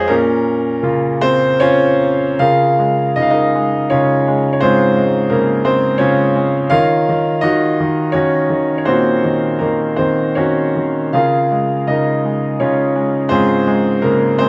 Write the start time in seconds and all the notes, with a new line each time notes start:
Already playing: G#3 F4 G#4 C5 C#5 D#5 F5 G5
0.08 A#2 C#4 A#4
0.83 C#3 A#3 F4
1.21 C4 C5
1.60 C#4 F4 C#5
2.39 C#3 F4 G#4 A#4 F5
2.79 G#3
3.16 C#3 D#4 D#5
3.22 F5
3.30 D#4 A#4 D#5
3.55 G#3
3.90 C#3 C#4 F4 C#5
4.28 G#3
4.53 C#5
4.60 G#2 C4 F4 G#4 C5
4.98 G#3
5.30 C#3 A#3 A#4
5.65 G#3 C4 C5
5.98 C#3 C#4 F4 C#5
6.36 G#3
6.70 D#3 F4 A#4 C#5 F5
7.09 D#3
7.41 D#3 D#4 F#4 D#5
7.80 D#3
8.12 D#3 C#4 F#4 C#5
8.50 D#3
8.78 C#5
8.85 A#2 C4 F#4 C5
9.24 D#3
9.59 D#3 A#3 A#4
9.96 D#3 C4 C5
10.35 D#3 C#4 F#4 C#5
10.76 D#3
11.13 C#3 F4 G#4 A#4 F5
11.51 G#3
11.87 C#3 D#4 A#4 D#5
12.25 G#3
12.60 C#3 C#4 F4 C#5
12.96 G#3
13.29 G#2 C4 F4 G#4 C5
13.67 G#3
14.02 C#3 A#3 A#4
14.38 G#3 C4 C5